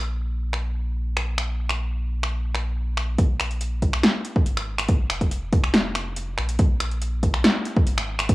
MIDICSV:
0, 0, Header, 1, 3, 480
1, 0, Start_track
1, 0, Tempo, 425532
1, 1674, Time_signature, 4, 2, 24, 8
1, 9417, End_track
2, 0, Start_track
2, 0, Title_t, "Sub bass"
2, 0, Program_c, 0, 38
2, 0, Note_on_c, 0, 34, 78
2, 3569, Note_off_c, 0, 34, 0
2, 3592, Note_on_c, 0, 34, 92
2, 4535, Note_off_c, 0, 34, 0
2, 5032, Note_on_c, 0, 32, 92
2, 5735, Note_off_c, 0, 32, 0
2, 5752, Note_on_c, 0, 29, 91
2, 7175, Note_off_c, 0, 29, 0
2, 7195, Note_on_c, 0, 34, 94
2, 7416, Note_off_c, 0, 34, 0
2, 7434, Note_on_c, 0, 34, 93
2, 8376, Note_off_c, 0, 34, 0
2, 8873, Note_on_c, 0, 32, 97
2, 9417, Note_off_c, 0, 32, 0
2, 9417, End_track
3, 0, Start_track
3, 0, Title_t, "Drums"
3, 599, Note_on_c, 9, 26, 42
3, 712, Note_off_c, 9, 26, 0
3, 1317, Note_on_c, 9, 26, 68
3, 1429, Note_off_c, 9, 26, 0
3, 1556, Note_on_c, 9, 26, 67
3, 1669, Note_off_c, 9, 26, 0
3, 1911, Note_on_c, 9, 26, 65
3, 2024, Note_off_c, 9, 26, 0
3, 2518, Note_on_c, 9, 26, 44
3, 2631, Note_off_c, 9, 26, 0
3, 2872, Note_on_c, 9, 26, 47
3, 2984, Note_off_c, 9, 26, 0
3, 3353, Note_on_c, 9, 26, 43
3, 3466, Note_off_c, 9, 26, 0
3, 3592, Note_on_c, 9, 36, 116
3, 3592, Note_on_c, 9, 42, 75
3, 3705, Note_off_c, 9, 36, 0
3, 3705, Note_off_c, 9, 42, 0
3, 3831, Note_on_c, 9, 26, 66
3, 3831, Note_on_c, 9, 42, 50
3, 3944, Note_off_c, 9, 26, 0
3, 3944, Note_off_c, 9, 42, 0
3, 3957, Note_on_c, 9, 42, 34
3, 4070, Note_off_c, 9, 42, 0
3, 4070, Note_on_c, 9, 42, 74
3, 4183, Note_off_c, 9, 42, 0
3, 4312, Note_on_c, 9, 36, 60
3, 4312, Note_on_c, 9, 42, 54
3, 4424, Note_off_c, 9, 42, 0
3, 4425, Note_off_c, 9, 36, 0
3, 4436, Note_on_c, 9, 26, 51
3, 4549, Note_off_c, 9, 26, 0
3, 4551, Note_on_c, 9, 38, 111
3, 4551, Note_on_c, 9, 42, 78
3, 4663, Note_off_c, 9, 38, 0
3, 4663, Note_off_c, 9, 42, 0
3, 4791, Note_on_c, 9, 42, 52
3, 4904, Note_off_c, 9, 42, 0
3, 4917, Note_on_c, 9, 36, 103
3, 5030, Note_off_c, 9, 36, 0
3, 5032, Note_on_c, 9, 42, 74
3, 5144, Note_off_c, 9, 42, 0
3, 5156, Note_on_c, 9, 26, 72
3, 5269, Note_off_c, 9, 26, 0
3, 5396, Note_on_c, 9, 26, 72
3, 5396, Note_on_c, 9, 42, 57
3, 5509, Note_off_c, 9, 26, 0
3, 5509, Note_off_c, 9, 42, 0
3, 5510, Note_on_c, 9, 42, 78
3, 5512, Note_on_c, 9, 36, 120
3, 5623, Note_off_c, 9, 42, 0
3, 5625, Note_off_c, 9, 36, 0
3, 5751, Note_on_c, 9, 26, 70
3, 5751, Note_on_c, 9, 42, 48
3, 5864, Note_off_c, 9, 26, 0
3, 5864, Note_off_c, 9, 42, 0
3, 5878, Note_on_c, 9, 36, 64
3, 5879, Note_on_c, 9, 42, 35
3, 5990, Note_off_c, 9, 36, 0
3, 5992, Note_off_c, 9, 42, 0
3, 5993, Note_on_c, 9, 42, 80
3, 6106, Note_off_c, 9, 42, 0
3, 6233, Note_on_c, 9, 36, 104
3, 6233, Note_on_c, 9, 42, 54
3, 6346, Note_off_c, 9, 36, 0
3, 6346, Note_off_c, 9, 42, 0
3, 6358, Note_on_c, 9, 26, 47
3, 6471, Note_off_c, 9, 26, 0
3, 6472, Note_on_c, 9, 38, 119
3, 6472, Note_on_c, 9, 42, 73
3, 6585, Note_off_c, 9, 38, 0
3, 6585, Note_off_c, 9, 42, 0
3, 6713, Note_on_c, 9, 26, 48
3, 6713, Note_on_c, 9, 42, 54
3, 6826, Note_off_c, 9, 26, 0
3, 6826, Note_off_c, 9, 42, 0
3, 6953, Note_on_c, 9, 42, 76
3, 7066, Note_off_c, 9, 42, 0
3, 7193, Note_on_c, 9, 26, 46
3, 7306, Note_off_c, 9, 26, 0
3, 7318, Note_on_c, 9, 42, 60
3, 7431, Note_off_c, 9, 42, 0
3, 7432, Note_on_c, 9, 42, 70
3, 7435, Note_on_c, 9, 36, 121
3, 7545, Note_off_c, 9, 42, 0
3, 7547, Note_off_c, 9, 36, 0
3, 7674, Note_on_c, 9, 26, 66
3, 7674, Note_on_c, 9, 42, 49
3, 7787, Note_off_c, 9, 26, 0
3, 7787, Note_off_c, 9, 42, 0
3, 7799, Note_on_c, 9, 42, 35
3, 7912, Note_off_c, 9, 42, 0
3, 7915, Note_on_c, 9, 42, 72
3, 8027, Note_off_c, 9, 42, 0
3, 8155, Note_on_c, 9, 36, 64
3, 8155, Note_on_c, 9, 42, 52
3, 8267, Note_off_c, 9, 36, 0
3, 8268, Note_off_c, 9, 42, 0
3, 8278, Note_on_c, 9, 26, 49
3, 8391, Note_off_c, 9, 26, 0
3, 8395, Note_on_c, 9, 38, 123
3, 8395, Note_on_c, 9, 42, 76
3, 8507, Note_off_c, 9, 38, 0
3, 8507, Note_off_c, 9, 42, 0
3, 8634, Note_on_c, 9, 42, 52
3, 8746, Note_off_c, 9, 42, 0
3, 8759, Note_on_c, 9, 36, 115
3, 8872, Note_off_c, 9, 36, 0
3, 8874, Note_on_c, 9, 42, 69
3, 8987, Note_off_c, 9, 42, 0
3, 8999, Note_on_c, 9, 26, 71
3, 9112, Note_off_c, 9, 26, 0
3, 9238, Note_on_c, 9, 26, 72
3, 9238, Note_on_c, 9, 42, 60
3, 9351, Note_off_c, 9, 26, 0
3, 9351, Note_off_c, 9, 42, 0
3, 9352, Note_on_c, 9, 42, 76
3, 9354, Note_on_c, 9, 36, 123
3, 9417, Note_off_c, 9, 36, 0
3, 9417, Note_off_c, 9, 42, 0
3, 9417, End_track
0, 0, End_of_file